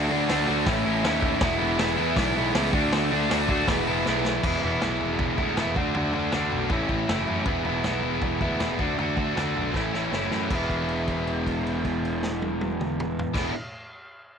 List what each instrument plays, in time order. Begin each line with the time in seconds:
Already playing: overdriven electric guitar D3 A3
0.10 picked electric bass D2, overdriven electric guitar A3 D4 F#4
0.29 picked electric bass D2, overdriven electric guitar D3 A3 D4 F#4, snare, open hi-hat
0.47 picked electric bass D2, overdriven electric guitar A3 D4 F#4
0.66 picked electric bass A1, overdriven electric guitar A2 E3 A3 C#4 E4, kick, snare, open hi-hat
0.84 picked electric bass A1, overdriven electric guitar A3 C#4 E4
1.04 picked electric bass D#2, overdriven electric guitar E3 A3 C#4 E4, snare, open hi-hat
1.23 kick
1.41 picked electric bass E1, overdriven electric guitar E3 G#3 B3 E4, kick, snare, open hi-hat
1.59 picked electric bass E1, overdriven electric guitar G#3 B3 E4
1.78 picked electric bass E1, overdriven electric guitar E3 G#3 B3 E4, snare, open hi-hat
1.97 picked electric bass E2, overdriven electric guitar G#3 B3 E4
2.16 picked electric bass B1, overdriven electric guitar E3 G#3 B3 E4, kick, snare, open hi-hat
2.36 picked electric bass B1, overdriven electric guitar G#3 B3 E4
2.54 picked electric bass C#2, overdriven electric guitar E3 G#3 B3 E4, snare, open hi-hat
2.73 picked electric bass D2, overdriven electric guitar D3 A3 D4 F#4, kick
2.92 picked electric bass D2, overdriven electric guitar D3 A3 D4 F#4, snare, open hi-hat
3.10 picked electric bass D2, overdriven electric guitar A3 D4 F#4
3.29 picked electric bass D2, overdriven electric guitar D3 A3 D4 F#4, snare, open hi-hat
3.49 picked electric bass D2, overdriven electric guitar A3 D4 F#4, kick
3.67 picked electric bass E1, overdriven electric guitar E3 G#3 B3 E4, kick, snare, open hi-hat
3.87 picked electric bass E1, overdriven electric guitar G#3 B3 E4
4.06 picked electric bass B1, overdriven electric guitar E3 G#3 B3 E4, snare
4.25 snare
4.43 picked electric bass E1, overdriven electric guitar E3 G#3 B3 E4, kick, floor tom, crash
4.63 picked electric bass E1, overdriven electric guitar G#3 B3 E4, floor tom
4.81 picked electric bass B1, overdriven electric guitar E3 G#3 B3 E4, snare, floor tom
5.00 picked electric bass E1, floor tom
5.19 picked electric bass E1, kick, floor tom
5.37 picked electric bass D2, overdriven electric guitar G#3 B3 E4, kick, floor tom
5.57 picked electric bass E1, overdriven electric guitar E3 G#3 B3 E4, snare, floor tom
5.76 picked electric bass D2, overdriven electric guitar D3 A3 D4 F#4, kick, floor tom
5.94 picked electric bass D2, overdriven electric guitar D3 A3 D4 F#4, floor tom
6.13 picked electric bass D2, overdriven electric guitar A3 D4 F#4, floor tom
6.32 picked electric bass D2, overdriven electric guitar D3 A3 D4 F#4, snare, floor tom
6.52 picked electric bass B1, floor tom
6.69 picked electric bass A1, overdriven electric guitar A2 E3 A3 C#4, kick, floor tom
6.73 overdriven electric guitar E4
6.89 picked electric bass A1, overdriven electric guitar A3 C#4 E4, kick, floor tom
7.08 picked electric bass F#1, overdriven electric guitar A2 E3 A3 C#4 E4, snare, floor tom
7.26 picked electric bass F#2, overdriven electric guitar A3 C#4 E4, floor tom
7.45 picked electric bass E1, overdriven electric guitar E3 G#3 B3 E4, kick, floor tom
7.65 picked electric bass E1, overdriven electric guitar G#3 B3 E4, floor tom
7.84 picked electric bass B1, overdriven electric guitar E3 G#3 B3 E4, snare, floor tom
8.03 picked electric bass E1, floor tom
8.22 picked electric bass E1, kick, floor tom
8.41 picked electric bass D2, overdriven electric guitar G#3 B3 E4, kick, floor tom
8.60 picked electric bass E1, overdriven electric guitar E3 G#3 B3 E4, snare, floor tom
8.79 picked electric bass D2, overdriven electric guitar A3 D4 F#4, kick, floor tom
8.83 overdriven electric guitar D3
8.98 picked electric bass D2, overdriven electric guitar D3 A3 D4 F#4, floor tom
9.17 picked electric bass D2, overdriven electric guitar A3 D4 F#4, kick, floor tom
9.36 picked electric bass D2, overdriven electric guitar D3 A3 D4 F#4, snare, floor tom
9.56 picked electric bass B1, floor tom
9.74 picked electric bass A1, overdriven electric guitar A2 E3 A3 C#4 E4, kick, snare
9.94 picked electric bass A1, overdriven electric guitar A3 C#4 E4, snare
10.11 picked electric bass F#1, overdriven electric guitar A2 E3 A3 C#4 E4, snare
10.31 picked electric bass F#2, overdriven electric guitar A3 C#4 E4, snare
10.50 picked electric bass E1, overdriven electric guitar E3 G#3 B3, kick, crash
10.55 overdriven electric guitar E4
10.70 kick, crash
10.89 crash
11.08 kick, crash
11.27 crash
11.47 kick, crash
11.67 crash
11.85 kick, crash
12.05 crash
12.23 snare
12.42 high tom
12.61 high tom
12.81 mid tom
13.00 mid tom
13.19 floor tom
13.33 picked electric bass E1, overdriven electric guitar E3 G#3 B3, kick, snare, crash
13.37 overdriven electric guitar E4